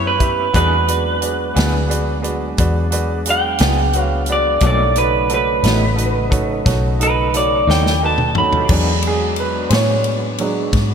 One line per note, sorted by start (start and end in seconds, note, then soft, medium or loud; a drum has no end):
0.00 0.51 F#2 medium
0.00 0.50 B3 medium
0.00 0.51 C#4 medium
0.00 0.11 E4 medium
0.00 0.50 E4 medium
0.00 0.12 G4 medium
0.00 0.50 G4 medium
0.00 0.12 B4 medium
0.00 0.12 C#5 medium
0.07 0.55 B4 medium
0.18 0.45 E4 medium
0.18 0.45 G4 soft
0.18 0.45 B4 soft
0.18 0.46 E5 medium
0.18 kick medium
0.18 closed hi-hat medium
0.53 1.53 E2 medium
0.53 0.75 E3 medium
0.53 0.89 G3 medium
0.53 0.89 A3 medium
0.53 0.75 B3 medium
0.53 0.89 C4 medium
0.53 0.76 D4 medium
0.53 0.89 D#4 medium
0.53 0.79 F#4 medium
0.53 0.80 G#4 medium
0.53 0.76 G#4 medium
0.53 0.80 B4 medium
0.53 1.87 B4 medium
0.53 0.81 D5 medium
0.53 kick loud
0.53 closed hi-hat medium
0.87 4.59 F#3 medium
0.87 4.60 G#3 medium
0.87 4.59 B3 medium
0.87 4.59 D4 medium
0.87 1.13 F#4 soft
0.87 1.14 G#4 soft
0.87 1.14 B4 soft
0.87 1.15 D5 medium
0.87 closed hi-hat medium
1.21 1.47 F#4 soft
1.21 1.48 G#4 soft
1.21 1.48 B4 soft
1.21 1.48 D5 medium
1.21 closed hi-hat medium
1.54 2.55 D2 medium
1.54 1.78 D4 medium
1.54 1.81 F#4 medium
1.54 1.82 G#4 medium
1.54 1.77 G#4 medium
1.54 1.82 B4 medium
1.54 1.82 D5 medium
1.54 closed hi-hat medium
1.59 1.78 E3 medium
1.59 1.78 B3 medium
1.59 snare medium
1.88 2.15 F#4 medium
1.88 2.15 G#4 medium
1.88 2.16 B4 medium
1.88 2.16 D5 medium
1.88 closed hi-hat medium
2.22 2.49 F#4 medium
2.22 2.49 G#4 medium
2.22 2.49 B4 medium
2.22 2.49 D5 medium
2.22 closed hi-hat medium
2.58 3.57 E2 medium
2.58 2.84 F#4 medium
2.58 2.84 G#4 medium
2.58 2.84 B4 medium
2.58 2.85 D5 medium
2.58 kick loud
2.58 closed hi-hat medium
2.91 3.17 F#4 medium
2.91 3.18 G#4 medium
2.91 3.18 B4 medium
2.91 3.18 D5 medium
2.91 closed hi-hat medium
3.26 3.52 F#4 medium
3.26 3.52 G#4 soft
3.26 3.52 B4 soft
3.26 3.53 D5 medium
3.26 closed hi-hat medium
3.30 4.01 G5 medium
3.58 4.59 C#2 medium
3.58 3.82 B3 medium
3.58 3.82 D4 medium
3.58 3.86 F#4 soft
3.58 3.86 G#4 soft
3.58 3.81 G#4 medium
3.58 3.86 B4 soft
3.58 3.86 D5 medium
3.58 snare loud
3.58 closed hi-hat medium
3.63 3.82 E3 medium
3.93 4.20 F#4 medium
3.93 4.20 G#4 medium
3.93 4.20 B4 medium
3.93 4.21 C#5 medium
3.93 closed hi-hat medium
4.01 4.27 F5 medium
4.26 4.54 F#4 soft
4.26 4.54 G#4 soft
4.26 4.54 B4 soft
4.26 4.55 D5 medium
4.26 closed hi-hat medium
4.32 4.63 D5 medium
4.60 5.61 B1 medium
4.60 4.82 B2 medium
4.60 4.83 F#3 medium
4.60 4.97 G3 medium
4.60 4.83 A3 medium
4.60 4.97 A#3 medium
4.60 4.96 D4 medium
4.60 4.87 D#4 medium
4.60 4.84 D#4 medium
4.60 4.96 E4 medium
4.60 4.88 F#4 medium
4.60 4.88 A4 medium
4.60 4.88 C#5 medium
4.60 kick loud
4.60 closed hi-hat medium
4.67 4.98 D5 medium
4.96 8.66 C#3 medium
4.96 8.66 F#3 medium
4.96 8.35 A3 medium
4.96 8.66 D#4 medium
4.96 5.22 D#4 soft
4.96 5.22 F#4 soft
4.96 5.22 A4 soft
4.96 5.30 B4 medium
4.96 5.23 C#5 medium
4.96 closed hi-hat medium
5.29 5.55 D#4 soft
5.29 5.56 F#4 soft
5.29 5.56 A4 soft
5.29 5.56 C#5 medium
5.29 closed hi-hat soft
5.34 6.64 B4 medium
5.63 6.63 A1 medium
5.63 5.86 F#3 medium
5.63 5.85 A3 medium
5.63 5.89 D#4 medium
5.63 5.85 D#4 medium
5.63 5.90 F#4 soft
5.63 5.90 A4 soft
5.63 5.90 C#5 medium
5.63 snare medium
5.63 closed hi-hat medium
5.67 5.86 B2 medium
5.96 6.22 D#4 medium
5.96 6.23 F#4 soft
5.96 6.23 A4 soft
5.96 6.23 B4 medium
5.96 closed hi-hat medium
6.29 6.56 D#4 medium
6.29 6.57 F#4 medium
6.29 6.57 A4 medium
6.29 6.57 C#5 medium
6.29 kick medium
6.29 closed hi-hat medium
6.65 7.65 B1 medium
6.65 6.91 D#4 medium
6.65 6.91 F#4 medium
6.65 6.92 A4 medium
6.65 6.92 C#5 medium
6.65 kick loud
6.65 closed hi-hat medium
6.69 snare soft
6.99 7.25 D#4 medium
6.99 7.26 F#4 soft
6.99 7.26 A4 soft
6.99 7.35 B4 medium
6.99 7.26 D#5 medium
6.99 closed hi-hat medium
7.33 7.59 D#4 medium
7.33 7.60 F#4 soft
7.33 7.60 A4 soft
7.33 7.60 C#5 medium
7.33 7.69 D5 medium
7.33 closed hi-hat medium
7.67 8.67 D#2 medium
7.67 7.89 B2 soft
7.67 7.89 F#3 medium
7.67 7.89 A3 medium
7.67 7.93 D#4 soft
7.67 7.88 D#4 medium
7.67 7.93 F#4 soft
7.67 7.94 A4 soft
7.67 7.94 C#5 medium
7.67 8.02 G5 medium
7.67 snare medium
7.86 snare medium
8.02 8.27 D#4 medium
8.02 8.28 F#4 soft
8.02 8.28 A4 soft
8.02 8.28 B4 medium
8.02 8.37 A5 medium
8.18 mid tom medium
8.35 8.61 A3 medium
8.35 8.62 D#4 soft
8.35 8.62 F#4 soft
8.35 8.62 A4 soft
8.35 8.62 C#5 medium
8.35 8.70 B5 medium
8.35 mid tom medium
8.41 8.64 B3 medium
8.41 8.64 C4 medium
8.45 8.66 D4 medium
8.45 8.67 E4 medium
8.51 8.69 F4 medium
8.51 8.70 G4 medium
8.51 floor tom medium
8.57 8.72 A4 medium
8.57 8.73 B4 medium
8.62 8.74 C5 medium
8.62 8.76 D5 medium
8.67 9.69 E2 medium
8.67 8.91 E3 medium
8.67 10.94 F#3 medium
8.67 9.68 F#3 soft
8.67 10.94 G#3 medium
8.67 9.68 G#3 soft
8.67 10.94 B3 medium
8.67 10.94 D4 medium
8.67 9.68 D4 medium
8.67 kick loud
8.67 crash loud
8.72 8.91 B3 medium
8.72 8.92 D4 medium
8.72 8.92 G#4 medium
9.02 ride medium
9.07 9.39 G#4 medium
9.36 9.72 B4 medium
9.36 ride medium
9.69 10.70 A2 medium
9.69 9.93 E3 medium
9.69 9.93 B3 medium
9.69 9.92 D4 medium
9.69 9.92 G#4 medium
9.69 9.73 C5 soft
9.69 snare loud
9.69 ride medium
9.74 10.94 C#5 medium
10.04 ride medium
10.38 10.70 F#3 soft
10.38 10.71 G#3 soft
10.38 10.71 D4 soft
10.38 ride medium
10.73 10.94 G#2 medium
10.73 kick medium
10.73 snare soft
10.73 ride medium